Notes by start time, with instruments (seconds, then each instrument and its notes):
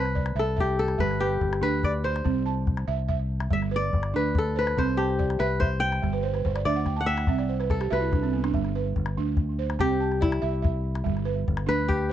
Already playing: fingered electric bass C2, balafon C4 A5, kora B4
0.05 calabash click
0.15 balafon D5, calabash thump
0.26 calabash click
0.35 fingered electric bass C2, balafon E5, calabash click
0.39 kora A4
0.56 kora G4, balafon E5, calabash thump
0.79 kora A4
0.88 calabash click
0.98 fingered electric bass G1, balafon G3, kora B4, calabash thump
1.11 calabash click
1.20 kora G4, balafon B4
1.41 fingered electric bass G1, calabash thump
1.53 calabash click
1.61 fingered electric bass D2, balafon D4, kora B4
1.83 kora D5, calabash thump
2.04 balafon C5, kora C5
2.16 calabash click
2.25 fingered electric bass C2, balafon C4, calabash thump
2.46 balafon A5
2.67 calabash thump
2.77 calabash click
2.88 fingered electric bass C2, balafon E5, calabash click
3.08 balafon E5, calabash thump
3.40 calabash click
3.51 fingered electric bass G1, balafon G3, kora E5, calabash thump
3.62 calabash click
3.71 balafon B4
3.76 kora D5
3.93 fingered electric bass G1, calabash thump
4.03 calabash click
4.14 fingered electric bass D2, balafon D4, kora B4
4.35 kora A4, calabash thump
4.56 kora B4, balafon C5
4.67 calabash click
4.77 fingered electric bass C2, balafon C4, kora C5, calabash thump
4.97 kora G4, balafon A5
5.10 calabash click
5.19 balafon D5, calabash thump
5.30 calabash click
5.39 fingered electric bass C2, kora B4, balafon E5, calabash click
5.60 kora C5, balafon E5, calabash thump
5.80 kora G5
5.92 calabash click
6.02 fingered electric bass G1, balafon G3, calabash thump, calabash click
6.13 balafon B4
6.23 balafon C5
6.34 balafon B4, calabash click
6.45 fingered electric bass G1, balafon C5, calabash thump
6.55 balafon D5, calabash click
6.65 fingered electric bass D2, balafon D4 E5, kora D5, calabash click
6.76 balafon F#5
6.86 balafon G5, calabash thump, calabash click
6.96 balafon A5
7.01 kora F#5
7.06 kora E5, balafon G5
7.17 balafon F#5, calabash click
7.27 fingered electric bass C2, balafon C4 E5, calabash thump, calabash click
7.38 balafon D5, calabash click
7.49 balafon C5
7.60 balafon B4, calabash click
7.70 balafon A4, kora A4, calabash thump, calabash click
7.80 balafon G4, calabash click
7.90 fingered electric bass C2, balafon F#4 E5, kora B4, calabash click
8.01 balafon E4
8.12 balafon D4, calabash thump, calabash click
8.23 balafon C4
8.33 balafon B3
8.44 balafon D4, calabash click
8.54 fingered electric bass G1, balafon G3, calabash thump
8.65 calabash click
8.75 balafon B4
8.96 fingered electric bass G1, calabash thump
9.06 calabash click
9.17 fingered electric bass D2, balafon D4
9.37 calabash thump
9.59 balafon C5
9.70 calabash click
9.79 fingered electric bass C2, balafon C4, kora G4, calabash thump
10.00 balafon A5
10.12 calabash click
10.21 kora E4, balafon D5, calabash thump
10.32 calabash click
10.42 fingered electric bass C2, balafon E5, calabash click
10.62 balafon E5, calabash thump
10.95 calabash click
11.04 fingered electric bass G1, balafon G3, calabash thump
11.17 calabash click
11.25 balafon B4
11.48 fingered electric bass G1, calabash thump
11.57 calabash click
11.67 fingered electric bass D2, balafon D4, kora B4
11.88 kora G4, calabash thump
12.09 balafon C5